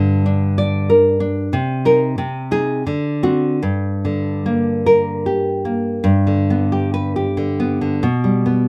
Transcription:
0.00 1.48 G2 medium
0.00 0.89 D3 soft
0.26 1.19 D4 soft
0.58 1.08 D5 medium
0.90 1.53 A#4 soft
1.20 1.52 D4 soft
1.53 2.16 C3 medium
1.85 2.15 D#4 soft
1.85 2.15 A#4 medium
2.18 2.84 C3 medium
2.51 2.82 D#4 soft
2.51 2.83 G#4 medium
2.87 3.61 D3 soft
3.23 3.59 C4 soft
3.23 3.59 F#4 medium
3.63 5.99 G2 soft
4.05 5.25 D3 soft
4.46 5.64 A#3 soft
4.86 5.49 A#4 medium
5.26 6.03 G4 soft
5.65 6.03 A#3 soft
6.04 7.98 G2 medium
6.27 7.26 D3 soft
6.50 7.48 B3 soft
6.72 6.93 G4 soft
6.94 7.16 B4 medium
7.16 8.02 G4 soft
7.37 7.80 D3 soft
7.60 8.02 B3 soft
7.81 8.02 D3 soft
8.03 8.68 B2 medium
8.24 8.68 G3 soft
8.46 8.68 B3 soft

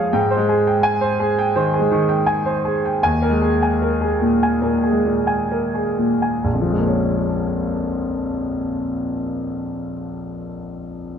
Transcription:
0.00 0.18 F3 medium
0.00 0.17 G#3 soft
0.00 0.18 G#4 soft
0.00 0.18 C#5 medium
0.00 0.18 F5 soft
0.00 0.18 G#5 medium
0.13 1.51 G#2 medium
0.13 0.42 G5 medium
0.31 0.59 C5 medium
0.37 0.75 G#3 soft
0.49 0.77 G#4 medium
0.67 0.95 G5 soft
0.83 1.12 G#5 medium
1.01 1.30 C5 medium
1.20 1.48 G#4 medium
1.38 1.67 G5 medium
1.56 1.90 D#3 soft
1.56 1.84 C5 medium
1.73 2.02 G#4 soft
1.79 2.18 G#3 soft
1.92 2.21 D#3 medium
2.09 2.38 G5 soft
2.26 2.56 G#5 soft
2.46 2.76 C5 soft
2.65 2.95 G#4 soft
2.85 3.03 G5 soft
3.03 4.59 D#2 medium
3.03 3.34 G#5 medium
3.22 3.53 A#4 soft
3.29 3.71 G#3 soft
3.42 3.73 G#4 soft
3.63 3.94 G#5 soft
3.82 4.14 A#4 soft
4.01 4.34 G#4 soft
4.21 4.54 A#2 soft
4.43 4.76 G#5 soft
4.62 5.04 A#2 soft
4.62 4.96 A#4 soft
4.83 5.18 G#4 soft
4.91 5.38 G#3 soft
5.05 5.41 A#2 soft
5.27 5.64 G#5 soft
5.52 5.88 A#4 soft
5.75 6.13 G#4 soft
5.98 6.36 A#2 soft
6.22 6.45 G#5 soft
6.44 10.04 A#1 soft
6.53 10.13 F2 soft
6.61 10.21 F3 soft
6.70 10.30 G#3 soft
6.78 10.37 A#3 soft
6.87 10.47 C#4 soft

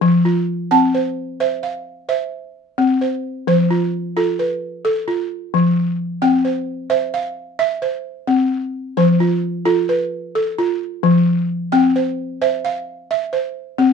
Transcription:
0.01 0.48 F3 medium
0.25 0.94 F4 medium
0.71 1.17 C4 medium
0.71 1.40 A5 medium
0.95 1.39 C5 medium
1.40 1.86 C5 medium
1.40 2.08 E5 medium
1.63 2.32 F5 medium
2.09 2.78 C5 medium
2.09 2.55 E5 medium
2.78 3.24 C4 medium
3.01 3.47 C5 medium
3.47 3.93 F3 medium
3.47 4.17 C5 medium
3.71 4.15 F4 medium
4.17 4.62 F4 medium
4.17 4.84 A4 medium
4.39 5.08 B4 medium
4.85 5.31 A4 medium
5.08 5.77 F4 medium
5.54 6.00 F3 medium
6.22 6.68 C4 medium
6.22 6.91 G5 medium
6.45 6.89 C5 medium
6.90 7.37 C5 medium
6.90 7.58 E5 medium
7.14 7.83 F5 medium
7.59 8.06 E5 medium
7.82 8.51 C5 medium
8.27 8.74 C4 medium
8.97 9.43 F3 medium
8.97 9.66 C5 medium
9.20 9.64 F4 medium
9.65 10.12 F4 medium
9.65 10.34 A4 medium
9.89 10.58 B4 medium
10.35 11.04 A4 medium
10.58 11.27 F4 medium
11.03 11.49 F3 medium
11.72 12.18 C4 medium
11.72 12.41 G5 medium
11.96 12.40 C5 medium
12.42 12.87 C5 medium
12.42 13.09 E5 medium
12.65 13.33 F5 medium
13.11 13.56 E5 medium
13.33 13.93 C5 medium
13.78 13.93 C4 medium

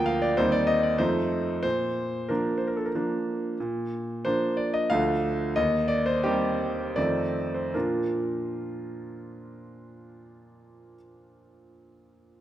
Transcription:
0.00 0.35 D2 medium
0.00 0.33 F3 soft
0.00 0.33 A#3 soft
0.00 0.34 F4 soft
0.00 0.39 G5 medium
0.06 0.21 F5 medium
0.22 0.37 D5 medium
0.37 0.99 D#2 medium
0.37 0.97 G3 soft
0.37 0.97 C4 soft
0.37 0.97 D#4 soft
0.37 0.53 C5 medium
0.52 0.68 D5 medium
0.67 0.83 D#5 medium
0.83 1.00 D5 medium
0.98 1.63 F2 medium
0.98 1.61 F3 soft
0.98 1.61 A3 soft
0.98 1.61 D#4 soft
0.98 1.61 C5 medium
1.63 2.28 A#2 soft
1.63 2.29 C5 medium
2.29 2.91 F3 soft
2.29 2.91 A#3 soft
2.29 2.91 D4 soft
2.29 2.57 A#4 soft
2.58 2.67 C5 soft
2.67 2.77 A#4 soft
2.77 2.86 A4 soft
2.86 2.95 A#4 soft
2.95 3.56 F3 soft
2.95 3.57 A#3 soft
2.95 3.57 D4 soft
3.60 4.23 A#2 soft
4.25 4.86 F3 soft
4.25 4.86 A#3 soft
4.25 4.86 D4 soft
4.25 4.57 C5 medium
4.57 4.73 D5 medium
4.74 4.90 D#5 medium
4.90 5.54 D2 medium
4.90 5.52 F3 soft
4.90 5.52 A3 soft
4.90 5.53 D4 soft
4.90 5.55 F5 medium
5.56 6.22 D#2 medium
5.56 5.89 D#5 medium
5.88 6.06 D5 medium
6.06 6.23 C5 medium
6.24 6.93 D#3 soft
6.24 6.93 G3 soft
6.24 6.94 C4 soft
6.24 6.97 G4 medium
6.96 7.72 F2 soft
6.96 7.70 D#3 soft
6.96 7.71 A3 soft
6.96 7.71 C4 soft
6.96 7.54 D5 medium
7.54 7.74 C5 soft
7.74 10.95 A#2 soft
7.74 10.95 F3 soft
7.74 10.95 D4 soft
7.74 10.96 F4 soft
7.74 10.95 A#4 soft

